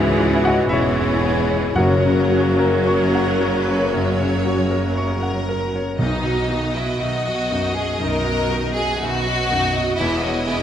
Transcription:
Already playing: C#2 G#2 E3 G#3 C#4 E4 F#4 G#4 A#4 C#5 E5 G#5 A#5 C#6
0.20 E4
0.44 F#4 G#4 D#5 F#5
0.69 E1 E2 E3 C#4 E4 G#4 C#5 E5 C#6
0.99 E5
1.22 G#4
1.51 C#5
1.72 F#1 F#2 C#3 F#3 A#4 F#5
1.76 F#2 A#3 C#4 F#4 A#4 C#5
2.06 C#3
2.31 F#4
2.59 A#4
2.81 A#4
2.87 C#6
3.15 F#5
3.41 A#4
3.61 B4
3.68 C#5
3.88 C#5
3.94 F#2
4.21 C#3
4.45 F#4
4.71 A#4
4.92 A#4
4.97 C#6
5.22 F#5
5.49 A#4
5.75 C#5
5.99 B1 B2 D#3 D#4 D#5
6.25 F#3 F#4 D#5
6.50 D#3 D#4 F#4
6.75 F#3 E4 F#4 D#5
7.01 B1 B2 D#3 D#4 F#4 E5
7.26 F#3 F#4 D#5
7.50 F#2 D#3 D#4
7.74 F#3 F#4 G#4 D#5
8.00 B1 F#2 B2 D#3 D#4 A#4
8.25 F#3 F#4 D#5
8.50 D#3 D#4 F#4
8.75 F#3 F#4 G#4 D#5
8.99 B1 B2 D#3 D#4 F#4 B4 E5
9.24 F#3 F#4 D#5
9.49 F#2 D#3 D#4 D#5
9.74 F#3 F#4 D#5
9.96 E1 E2 E3 C#4 E4
10.20 G#3 E4 F#4 C#5
10.44 E3 C#4 E4 G#4

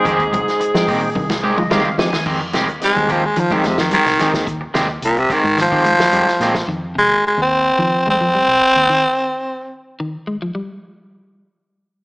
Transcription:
Already playing: G#2 G#3 C4 D#4 G#4 G5
0.04 F2 D#3 G#3 C4 G4, kick, closed hi-hat
0.19 D#2, kick, closed hi-hat
0.32 C3, muted clean electric guitar stroke, kick, closed hi-hat, high conga
0.48 snare, closed hi-hat
0.60 muted clean electric guitar stroke, muted fingered electric bass stroke, closed hi-hat, high conga
0.74 F3 G#3 C4 D#4 G5, muted clean electric guitar stroke, snare, closed hi-hat, high conga
0.88 A#2 D#3 G#3 C4 G4, kick, open hi-hat, high conga, low conga
1.03 muted clean electric guitar stroke
1.15 C2 D#3, kick, high tom, high conga
1.30 muted clean electric guitar stroke, snare, high conga
1.43 D#3 G#3 G4 C5, muted clean electric guitar stroke
1.57 F3 D#4 F4 D#5, muted clean electric guitar stroke, mid tom, high conga
1.70 D#2 D#3 G3 G#3 C4 D#4 G4 F5, snare, high conga
1.85 low conga
1.98 F3 G#3 C4 D#4 G4 G#5, muted clean electric guitar stroke, snare
2.12 muted fingered electric bass stroke, muted clean electric guitar stroke, snare, low conga
2.26 F2 D#3 G#3 C4 G4, kick, crash
2.41 muted clean electric guitar stroke
2.53 C3 D#3 G#3 C4 G4, snare, closed hi-hat, high conga
2.68 D#2, muted clean electric guitar stroke, closed hi-hat
2.81 G#3 C4 D#4 G4, snare, closed hi-hat, high conga
2.95 D#2, muted clean electric guitar stroke, closed hi-hat, high conga
3.09 D#3 F3 G#3 C4 G4, kick, closed hi-hat, low conga
3.24 G#3, muted clean electric guitar stroke
3.36 D#3 F3, muted clean electric guitar stroke, closed hi-hat, high conga
3.50 D#3 G#3 C4 D#4 F4 G4, kick, closed hi-hat, high conga
3.64 F2 C3 G#3, muted clean electric guitar stroke, snare, closed hi-hat
3.78 D#3 F3, snare, low conga
3.91 D#3 G3 G#3 C4 G4, closed hi-hat, high conga
4.06 C2, muted clean electric guitar stroke, snare, closed hi-hat
4.19 D#3 G#3 C4 D#4 G4 G#4, muted fingered electric bass stroke, snare, closed hi-hat, low conga
4.34 D#2, muted clean electric guitar stroke, kick, snare
4.46 D#3, kick, closed hi-hat
4.61 muted clean electric guitar stroke
4.74 D#2 C3 D#3 G#3 C4 G4, snare, closed hi-hat
4.89 muted clean electric guitar stroke
5.02 C2 A#2, closed hi-hat
5.16 C3, muted clean electric guitar stroke, closed hi-hat
5.30 D#3 G#3 C4 G4, muted fingered electric bass stroke, kick, closed hi-hat
5.44 G#2, muted clean electric guitar stroke, closed hi-hat
5.57 D#3, muted clean electric guitar stroke, snare, closed hi-hat
5.61 F3
5.72 D#3 G#3 C4 G4, kick
5.85 G#3, closed hi-hat
5.99 F3, snare, closed hi-hat
6.12 F2 D#3 G3 G#3 C4 G4, closed hi-hat
6.27 muted clean electric guitar stroke, snare
6.40 A#2 D#3 G#3 C4 G4, snare, closed hi-hat
6.55 muted clean electric guitar stroke, kick, snare
6.68 F2 D#3
6.95 C3 G#3
7.10 D#2
7.27 G#3
7.38 D#2
7.42 C4
7.78 D#3 F3
8.06 F2 G#3
8.10 C4
8.21 F3
8.35 G3
8.48 C2
8.62 muted fingered electric bass stroke
8.76 D#2
8.90 D#3
10.00 D#3
10.27 G#3
10.42 F3
10.55 G3

